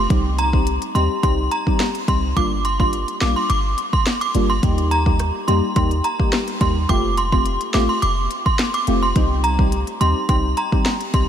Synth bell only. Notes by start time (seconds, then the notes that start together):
0.39 A#5
0.95 C6
1.23 C6
1.51 A#5
2.08 C6
2.37 D6
2.65 C6
2.80 C6
3.21 D6
3.36 C6
3.50 D6
3.93 C6
4.21 D6
4.50 C6
4.91 A#5
5.48 C6
5.76 C6
6.04 A#5
6.61 C6
6.89 D6
7.18 C6
7.32 C6
7.74 D6
7.89 C6
8.02 D6
8.46 C6
8.74 D6
9.03 C6
9.44 A#5
10.01 C6
10.29 C6
10.57 A#5
11.14 C6